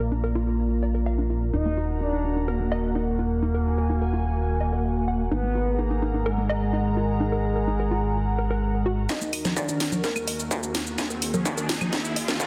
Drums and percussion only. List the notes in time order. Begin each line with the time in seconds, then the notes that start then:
9.09 kick, snare, shaker
9.21 shaker
9.33 open hi-hat, claves, shaker
9.45 snare, low conga, shaker
9.57 kick, shaker
9.69 shaker
9.80 snare, open hi-hat, shaker
9.92 low conga, shaker
10.04 kick, snare, shaker
10.16 claves, shaker
10.28 open hi-hat, shaker
10.39 shaker
10.51 kick, shaker
10.63 shaker
10.75 snare, open hi-hat, shaker
10.87 shaker
10.98 kick, snare, claves, shaker
11.10 shaker
11.22 open hi-hat, shaker
11.34 low conga, shaker
11.46 kick, shaker
11.57 shaker
11.69 snare, open hi-hat, shaker
11.81 low conga, claves, shaker
11.93 kick, snare, shaker
12.05 shaker
12.16 open hi-hat, shaker
12.28 snare, shaker
12.40 kick, shaker